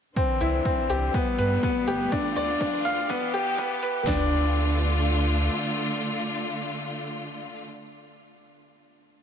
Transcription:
0.16 string section D3 E3 C4, upright piano C4, kick
0.41 sub bass C2, upright piano E4, closed hi-hat
0.65 upright piano C4, kick
0.90 sub bass C2, upright piano G4, closed hi-hat
1.14 string section G3 A3 B3, upright piano B3, kick
1.39 sub bass G2, upright piano B4, closed hi-hat
1.63 upright piano B3, kick
1.87 sub bass G1, upright piano G4, closed hi-hat
2.12 string section D3 F4, upright piano D4, kick
2.36 sub bass D2, upright piano D5, closed hi-hat
2.60 upright piano D4, kick
2.85 sub bass D2, upright piano F5, closed hi-hat
3.09 string section E3 B3 G4, upright piano B3, kick
3.34 sub bass E1, upright piano G4, closed hi-hat
3.58 upright piano B3, kick
3.83 sub bass E2, upright piano B4, closed hi-hat
4.07 sub bass D2, string section D3 A3 F4, upright piano D4, kick, snare

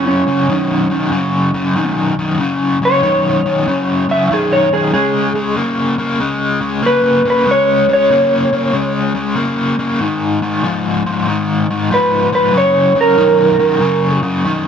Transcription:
Already playing: overdriven electric guitar F#2 C#3
0.07 electric slide guitar C#4
0.27 overdriven electric guitar F#2 C#3
0.49 overdriven electric guitar F#2 D#3
0.90 overdriven electric guitar F#2 D#3
1.12 overdriven electric guitar F#2 C#3
1.54 overdriven electric guitar F#2 C#3
1.76 overdriven electric guitar F#2 D#3
2.19 overdriven electric guitar F#2 D#3
2.39 overdriven electric guitar F#2 C#3
2.82 overdriven electric guitar F#2 C#3, electric slide guitar C#5
3.03 overdriven electric guitar F#2 D#3
3.46 overdriven electric guitar F#2 D#3
3.68 overdriven electric guitar F#2 C#3
4.09 overdriven electric guitar F#2 C#3, electric slide guitar E5
4.31 overdriven electric guitar F#2 D#3, electric slide guitar G#4
4.53 electric slide guitar C#5
4.73 overdriven electric guitar F#2 D#3, electric slide guitar G#4
4.94 overdriven electric guitar C#3 G#3, electric slide guitar G#4
5.35 overdriven electric guitar C#3 G#3
5.57 overdriven electric guitar C#3 A#3
5.98 overdriven electric guitar C#3 A#3
6.20 overdriven electric guitar C#3 G#3
6.61 overdriven electric guitar C#3 G#3
6.82 overdriven electric guitar C#3 A#3, electric slide guitar B4
7.25 overdriven electric guitar C#3 A#3
7.30 electric slide guitar B4
7.47 overdriven electric guitar C#3 G#3
7.51 electric slide guitar C#5
7.89 overdriven electric guitar C#3 G#3
7.93 electric slide guitar C#5
8.11 overdriven electric guitar C#3 A#3
8.53 overdriven electric guitar C#3 A#3
8.73 overdriven electric guitar C#3 G#3
9.15 overdriven electric guitar C#3 G#3
9.36 overdriven electric guitar C#3 A#3
9.79 overdriven electric guitar C#3 A#3
10.01 overdriven electric guitar G#2 D#3
10.42 overdriven electric guitar G#2 D#3
10.64 overdriven electric guitar G#2 F3
11.06 overdriven electric guitar G#2 F3
11.27 overdriven electric guitar G#2 D#3
11.71 overdriven electric guitar G#2 D#3
11.91 overdriven electric guitar G#2 F3, electric slide guitar B4
12.32 overdriven electric guitar G#2 F3, electric slide guitar B4
12.53 overdriven electric guitar F#2 C#3
12.58 electric slide guitar C#5
12.95 overdriven electric guitar F#2 C#3
13.01 electric slide guitar A#4
13.18 overdriven electric guitar F#2 D#3
13.59 overdriven electric guitar F#2 D#3
13.80 overdriven electric guitar F#2 C#3
14.23 overdriven electric guitar F#2 C#3
14.44 overdriven electric guitar F#2 D#3

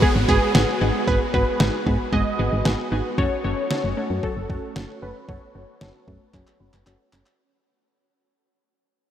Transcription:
Already playing: string machine G#3 B3 F#4, downlifter
0.02 synth arpeggio sound G#3, synth pluck B3 F#4 G#4, analog polysynth G#4, kick
0.15 fm bass G#1
0.29 fm bass G#1, synth pluck B3 F#4 B4, analog polysynth G#4, kick
0.55 fm bass G#1, synth pluck B3 F#4 G#4, synth arpeggio sound F#4, snare
0.81 fm bass G#1, synth pluck B3 F#4 G#4, synth arpeggio sound D#4
1.07 fm bass G#1, synth pluck B3 F#4 G#4, synth arpeggio sound G#4, analog polysynth B4, kick
1.34 fm bass G#1, synth pluck B3 F#4 G#4, synth arpeggio sound F#4, analog polysynth B4, kick
1.60 fm bass G#1, synth pluck B3 F#4 G#4, synth arpeggio sound D#4, snare
1.86 fm bass G#2, synth pluck B3 F#4 G#4, synth arpeggio sound B3, kick
2.13 fm bass G#1, synth arpeggio sound G#3, synth pluck B3 F#4 G#4, analog polysynth D#5, kick
2.39 fm bass G#1, synth pluck B3 F#4 G#4
2.52 fm bass G#1
2.65 fm bass G#1, synth pluck B3 F#4 G#4, synth arpeggio sound F#4, snare
2.92 fm bass G#1, synth pluck B3 F#4 G#4, synth arpeggio sound D#4
3.18 fm bass F#1, string machine A3 C#4 F#4, synth pluck C#4 F#4 A4, analog polysynth C#5, synth arpeggio sound F#5, kick
3.44 fm bass F#1, synth pluck C#4 F#4 A4, synth arpeggio sound F#4, analog polysynth C#5
3.71 synth pluck C#4 F#4 A4, synth arpeggio sound C#4, snare
3.84 fm bass F#1
3.97 synth arpeggio sound A3, synth pluck C#4 F#4 A4
4.10 fm bass F#2
4.23 synth arpeggio sound F#3, synth pluck C#4 F#4 A4, analog polysynth A4, kick
4.37 fm bass F#1
4.50 fm bass F#1, synth pluck C#4 F#4 A4, kick
4.76 fm bass F#1, synth pluck C#4 F#4 A4, synth arpeggio sound F#4, snare
5.02 fm bass F#1, synth pluck C#4 F#4 A4, synth arpeggio sound C#4, analog polysynth B4
5.29 fm bass F#1, string machine B3, synth pluck C#4 F#4 A4, analog polysynth C#5, synth arpeggio sound F#5, kick
5.55 fm bass F#1, synth pluck C#4 F#4 A4, synth arpeggio sound F#4
5.81 fm bass F#1, synth pluck C#4 F#4 A4, synth arpeggio sound C#4, snare
6.08 fm bass F#2, synth arpeggio sound A3, synth pluck C#4 F#4 A4, kick
6.34 fm bass F#1, synth arpeggio sound F#3, synth pluck C#4 F#4 G#4, kick, clap
6.47 clap
6.60 fm bass F#1, synth pluck C#4 F#4 B4
6.73 fm bass F#1, clap
6.87 fm bass F#1, synth pluck C#4 F#4 A4, synth arpeggio sound F#4, clap
7.13 fm bass F#1, synth pluck C#4 F#4 A4, synth arpeggio sound C#4, clap
7.26 clap

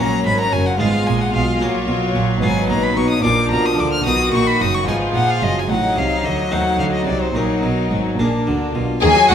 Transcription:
Already playing: viola section F#3, violin section C#4 A#4
0.00 double bass section A#1, harpsichord A#2 C#4 F#4 A#4, cello section A#2, violin A#5
0.25 double bass section G#1, cello section G#2, harpsichord G#2, violin B5
0.40 violin A#5
0.52 double bass section F#1, harpsichord F#2, cello section F#2, violin G#5
0.66 violin F#5
0.78 double bass section G#1, harpsichord G#2 G#3 B3 F4 B4, cello section G#2, viola section G#3, violin section F4 G#4, violin F5
1.06 double bass section A#1, harpsichord A#2, cello section A#2, violin G#5
1.21 violin F#5
1.33 double bass section B1, cello section B2, harpsichord B2, violin F5
1.59 double bass section A#1, cello section A#2, harpsichord A#2 A#3 F#4 C#5, viola section F#3, violin section C#5
1.87 double bass section B1, harpsichord B2, cello section B2
2.14 double bass section A#1, cello section A#2, harpsichord A#2
2.41 double bass section G#1, harpsichord G#2 B3 F4 F5, cello section G#2, violin section D#4 B4, violin G#5
2.69 double bass section A#1, cello section A#2, harpsichord A#2, violin A#5
2.83 violin B5
2.96 double bass section B1, cello section B2, harpsichord B2, violin C#6
3.10 violin D#6
3.23 double bass section A#1, cello section A#2, harpsichord A#2 A#3 F4 F5, viola section F3, violin section D4 A#4, violin D6
3.50 double bass section B1, cello section B2, harpsichord B2, violin A#5
3.66 violin D#6
3.77 double bass section D2, cello section D3, harpsichord D3, violin D6
3.93 violin F6
4.04 double bass section B1, cello section B2, harpsichord B2 D#4 B4, viola section D#3, violin section F#4, violin D#6
4.32 double bass section A#1, cello section A#2, harpsichord A#2, violin C#6
4.47 violin B5
4.59 double bass section F#1, harpsichord F#2, cello section F#2, violin D#6
4.75 violin C#6
4.86 double bass section G#1, cello section G#2, harpsichord G#2 D#4 B4, viola section F3, violin section F4 G#4, violin G#5
5.14 double bass section A#1, harpsichord A#2, cello section A#2, violin F#5
5.30 violin F5
5.42 double bass section F#1, cello section F#2, harpsichord F#2, violin D#5
5.58 violin G#5
5.68 double bass section A1, harpsichord A2, cello section A2, viola section F#3, violin section D#4, violin F#5
5.96 double bass section C2, harpsichord C3, cello section C3, violin F5
6.24 double bass section D2, harpsichord D3, cello section D3, violin D#5
6.51 double bass section D#2, harpsichord D#3 A3 D#4 C5, cello section D#3, violin section D#4 F#4, violin F#5
6.79 double bass section D2, harpsichord D3, cello section D3, violin F5
6.94 violin D#5
7.06 double bass section C2, harpsichord C3, cello section C3, violin D5
7.21 violin C5
7.34 double bass section A#1, harpsichord A#2 D#4 A#4, cello section A#2, viola section F#3, violin section D#4 F#4, violin A#4
7.63 double bass section B1, harpsichord B2, cello section B2
7.91 double bass section G#1, harpsichord G#2, cello section G#2
8.18 double bass section A#1, harpsichord A#2 D4 A#4, cello section A#2, viola section A#3, violin section D4 G#4
8.47 double bass section D2, harpsichord D3, cello section D3, violin section F#4
8.75 double bass section B1, harpsichord B2, cello section B2, violin section F4
9.02 double bass section D#2, harpsichord D#3, cello section D#3, viola section A#3, violin section G#4 G#5, violin G#4
9.16 viola section F#3, harpsichord F#4
9.29 double bass section D#2, harpsichord D#3 D#5, cello section D#3, viola section A#3, violin section F#4 F#5, violin F#4

